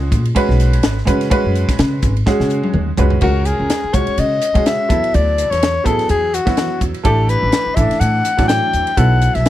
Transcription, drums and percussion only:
0.12 kick, hi-hat pedal, ride
0.25 ride
0.36 kick, ride
0.50 snare
0.60 snare, hi-hat pedal, ride
0.73 ride
0.83 snare, ride
0.98 snare
1.07 kick, hi-hat pedal, ride
1.21 snare, ride
1.31 kick, ride
1.55 hi-hat pedal, ride
1.69 kick, snare, ride
1.79 snare, ride
2.02 kick, hi-hat pedal, ride
2.17 ride
2.27 kick, snare
2.40 snare
2.50 hi-hat pedal
2.63 high tom
2.74 mid tom
2.97 floor tom, hi-hat pedal
3.10 floor tom
3.21 kick, crash
3.45 hi-hat pedal, ride
3.70 snare, hi-hat pedal, ride
3.94 kick, hi-hat pedal, ride
4.07 ride
4.18 hi-hat pedal, ride
4.41 hi-hat pedal, ride
4.55 kick, ride
4.66 snare, hi-hat pedal, ride
4.90 kick, hi-hat pedal, ride
5.04 ride
5.14 hi-hat pedal, ride
5.38 hi-hat pedal, ride
5.52 snare, ride
5.63 snare, hi-hat pedal, ride
5.86 kick, hi-hat pedal, ride
5.99 snare, ride
6.09 hi-hat pedal, ride
6.34 hi-hat pedal, ride
6.47 kick, snare, ride
6.57 snare, hi-hat pedal, ride
6.81 kick, hi-hat pedal, ride
6.94 ride
7.05 kick, hi-hat pedal, ride
7.29 hi-hat pedal, ride
7.52 snare, hi-hat pedal, ride
7.77 kick, hi-hat pedal, ride
7.91 snare, ride
8.01 hi-hat pedal, ride
8.25 hi-hat pedal, ride
8.38 kick, snare, ride
8.49 snare, hi-hat pedal, ride
8.73 hi-hat pedal, ride
8.87 ride
8.97 kick, hi-hat pedal, ride
9.22 hi-hat pedal, ride
9.35 snare, ride
9.45 hi-hat pedal, ride

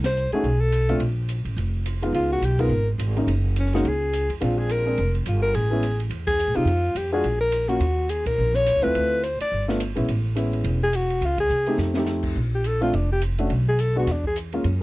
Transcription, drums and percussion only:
0.04 snare, ride
0.16 hi-hat pedal
0.32 ride
0.44 ride
0.72 hi-hat pedal, ride
0.89 ride
1.00 ride
1.29 hi-hat pedal, ride
1.45 ride
1.58 ride
1.86 hi-hat pedal, ride
2.03 ride
2.14 ride
2.42 hi-hat pedal, ride
2.59 kick, ride
2.99 hi-hat pedal, ride
3.17 ride
3.28 ride
3.56 hi-hat pedal, ride
3.65 snare
3.73 snare, ride
3.85 ride
4.13 hi-hat pedal, ride
4.30 ride
4.41 ride
4.69 hi-hat pedal, ride
4.97 ride
5.15 ride
5.26 hi-hat pedal, ride
5.54 ride
5.83 hi-hat pedal, ride
6.00 ride
6.11 ride
6.27 kick, ride
6.39 hi-hat pedal
6.55 ride
6.67 ride
6.96 hi-hat pedal, ride
7.24 ride
7.52 hi-hat pedal, ride
7.69 ride
7.80 ride
8.09 hi-hat pedal, ride
8.26 kick, ride
8.54 snare
8.66 hi-hat pedal, ride
8.84 ride
8.95 ride
9.23 hi-hat pedal, ride
9.40 ride
9.69 snare
9.80 hi-hat pedal, ride
9.96 ride
10.08 ride
10.36 hi-hat pedal, ride
10.53 ride
10.64 ride
10.93 hi-hat pedal, ride
11.10 ride
11.22 ride
11.38 kick, ride
11.50 hi-hat pedal
11.66 ride
11.78 snare
11.94 snare
12.05 snare, hi-hat pedal
12.23 kick, crash
12.64 hi-hat pedal, ride
12.82 ride
12.93 ride
13.21 hi-hat pedal, ride
13.38 ride
13.50 ride
13.79 hi-hat pedal, ride
14.07 snare, ride
14.24 kick
14.36 hi-hat pedal, ride
14.52 ride
14.64 ride

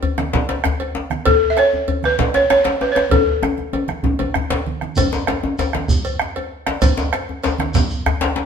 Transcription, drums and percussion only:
0.03 cowbell, djembe bass
0.18 bombo rim, djembe slap, high conga
0.33 bombo rim, bombo low, djembe slap, low conga
0.49 cowbell, djembe slap, high conga
0.64 bombo rim, djembe slap, djembe bass
0.80 cowbell, djembe slap, djembe tone
0.95 djembe slap
1.10 bombo rim, djembe slap, high conga
1.25 bombo low, cowbell, djembe bass, low conga
1.42 djembe slap
1.57 bombo rim, cowbell, djembe slap
1.73 djembe tone
1.88 cowbell, djembe bass
2.03 bombo rim, djembe slap, high conga
2.18 bombo rim, bombo low, djembe slap, low conga
2.34 cowbell, djembe slap
2.50 bombo rim, djembe slap
2.64 cowbell, djembe slap, djembe tone
2.81 djembe slap
2.96 bombo rim, djembe slap
3.11 bombo rim, bombo low, cowbell, djembe slap, high conga, djembe tone, djembe bass, low conga
3.28 bombo rim, high conga
3.43 bombo rim, djembe slap, djembe tone, high conga
3.57 bombo rim, high conga, djembe tone
3.73 bombo rim, cowbell, djembe tone
3.88 bombo rim, djembe slap, high conga
4.03 bombo low, high conga, djembe tone, low conga
4.19 cowbell, djembe tone, low conga
4.34 bombo rim, djembe slap, low conga, djembe bass
4.50 cowbell, djembe slap, djembe tone, low conga
4.67 djembe slap, high conga
4.81 bombo rim, djembe slap, high conga
4.96 bombo low, cowbell, djembe tone, low conga, djembe bass, shekere
5.12 djembe slap, shekere
5.27 bombo rim, cowbell, djembe slap
5.43 djembe tone
5.58 cowbell, djembe slap, djembe bass, shekere
5.73 bombo rim, djembe slap, high conga
5.88 bombo rim, bombo low, low conga, shekere
6.05 cowbell, high conga, shekere
6.19 bombo rim, djembe slap
6.36 cowbell, djembe slap, djembe tone
6.66 bombo rim, djembe slap
6.82 bombo low, cowbell, djembe slap, low conga, djembe bass, shekere
6.97 djembe slap, shekere
7.13 bombo rim, cowbell, djembe slap
7.29 djembe tone
7.43 cowbell, djembe slap, djembe bass, shekere
7.58 bombo rim, djembe slap, high conga
7.74 bombo rim, bombo low, djembe slap, low conga, shekere
7.90 djembe slap, high conga, shekere
8.06 bombo rim, djembe slap, djembe bass
8.21 cowbell, djembe slap, djembe tone
8.36 djembe slap

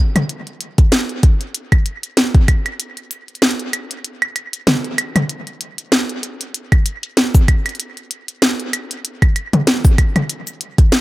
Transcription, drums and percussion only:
0.16 closed hi-hat, high tom, claves
0.29 closed hi-hat
0.47 closed hi-hat
0.61 closed hi-hat
0.78 kick, closed hi-hat
0.92 snare, closed hi-hat
1.09 closed hi-hat
1.23 kick, closed hi-hat
1.41 closed hi-hat
1.55 closed hi-hat
1.72 kick, closed hi-hat, claves
1.86 closed hi-hat
2.03 closed hi-hat
2.17 snare, closed hi-hat
2.35 kick, closed hi-hat
2.48 kick, closed hi-hat, claves
2.66 closed hi-hat, claves
2.80 closed hi-hat
2.97 closed hi-hat
3.11 closed hi-hat
3.28 closed hi-hat
3.35 closed hi-hat
3.42 snare, closed hi-hat
3.51 closed hi-hat
3.59 closed hi-hat
3.73 closed hi-hat, claves
3.91 closed hi-hat
4.05 closed hi-hat
4.22 closed hi-hat, claves
4.36 closed hi-hat, claves
4.53 closed hi-hat
4.67 snare, closed hi-hat, high tom
4.85 closed hi-hat
4.98 closed hi-hat, claves
5.16 closed hi-hat, high tom, claves
5.29 closed hi-hat
5.47 closed hi-hat
5.61 closed hi-hat
5.78 closed hi-hat
5.92 snare, closed hi-hat
6.09 closed hi-hat
6.23 closed hi-hat
6.41 closed hi-hat
6.54 closed hi-hat
6.72 kick, closed hi-hat, claves
6.86 closed hi-hat
7.03 closed hi-hat
7.17 snare, closed hi-hat
7.35 kick, closed hi-hat, cabasa
7.48 kick, closed hi-hat, claves
7.66 closed hi-hat, claves
7.69 closed hi-hat
7.75 closed hi-hat
7.80 closed hi-hat
7.97 closed hi-hat
8.11 closed hi-hat
8.28 closed hi-hat
8.42 snare, closed hi-hat
8.60 closed hi-hat
8.73 closed hi-hat, claves
8.91 closed hi-hat
9.05 closed hi-hat
9.22 kick, closed hi-hat, claves
9.36 closed hi-hat, claves
9.53 closed hi-hat, high tom
9.67 snare, closed hi-hat
9.85 kick, closed hi-hat, cabasa
9.98 kick, closed hi-hat, claves
10.16 closed hi-hat, high tom, claves
10.30 closed hi-hat
10.47 closed hi-hat, cabasa
10.61 closed hi-hat
10.78 kick, closed hi-hat
10.92 snare, closed hi-hat

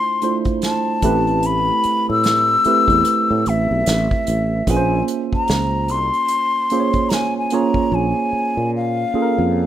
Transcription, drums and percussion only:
0.22 closed hi-hat
0.45 kick, closed hi-hat
0.62 snare, closed hi-hat
1.02 kick, closed hi-hat
1.27 closed hi-hat
1.43 closed hi-hat
1.84 closed hi-hat
2.24 snare, closed hi-hat
2.64 closed hi-hat
2.88 kick, closed hi-hat
3.05 closed hi-hat
3.46 closed hi-hat
3.86 snare, closed hi-hat
4.11 kick
4.27 closed hi-hat
4.67 kick, closed hi-hat
5.08 closed hi-hat
5.33 kick
5.48 snare, closed hi-hat
5.88 closed hi-hat
6.13 closed hi-hat
6.28 closed hi-hat
6.70 closed hi-hat
6.93 kick, closed hi-hat
7.10 snare, closed hi-hat
7.50 closed hi-hat
7.74 kick

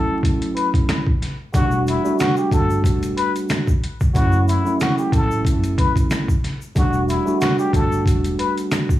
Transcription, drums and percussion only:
0.23 kick, closed hi-hat
0.42 closed hi-hat
0.57 closed hi-hat
0.74 kick, closed hi-hat
0.89 snare, closed hi-hat
1.06 kick
1.22 snare, closed hi-hat
1.54 kick, closed hi-hat, shaker
1.71 shaker
1.87 closed hi-hat, shaker
2.05 shaker
2.19 snare, closed hi-hat, shaker
2.37 shaker
2.51 kick, closed hi-hat, shaker
2.70 shaker
2.84 kick, closed hi-hat, shaker
3.03 closed hi-hat, shaker
3.18 closed hi-hat
3.36 closed hi-hat, shaker
3.49 snare, closed hi-hat, shaker
3.67 kick, shaker
3.84 closed hi-hat
4.00 kick, shaker
4.15 kick, closed hi-hat, shaker
4.32 shaker
4.48 closed hi-hat, shaker
4.66 shaker
4.80 snare, closed hi-hat, shaker
4.98 shaker
5.12 kick, closed hi-hat, shaker
5.31 shaker
5.45 kick, closed hi-hat, shaker
5.64 closed hi-hat, shaker
5.78 kick, closed hi-hat
5.96 kick, closed hi-hat, shaker
6.10 snare, closed hi-hat, shaker
6.28 kick, shaker
6.44 snare, closed hi-hat
6.62 shaker
6.76 kick, closed hi-hat, shaker
6.93 shaker
7.09 closed hi-hat, shaker
7.27 shaker
7.41 snare, closed hi-hat, shaker
7.59 shaker
7.73 kick, closed hi-hat, shaker
7.92 shaker
8.06 kick, closed hi-hat, shaker
8.24 closed hi-hat, shaker
8.39 closed hi-hat
8.57 closed hi-hat, shaker
8.71 snare, closed hi-hat, shaker
8.89 kick, shaker

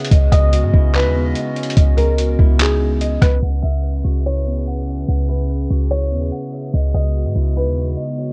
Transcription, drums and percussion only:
0.05 closed hi-hat
0.12 kick, closed hi-hat
0.32 kick, closed hi-hat
0.53 closed hi-hat
0.74 kick
0.94 clap, closed hi-hat
1.35 closed hi-hat
1.56 closed hi-hat
1.63 closed hi-hat
1.70 closed hi-hat
1.77 kick, closed hi-hat
1.98 closed hi-hat
2.18 closed hi-hat
2.39 kick
2.60 clap, closed hi-hat
3.01 closed hi-hat
3.22 kick, cross-stick, closed hi-hat

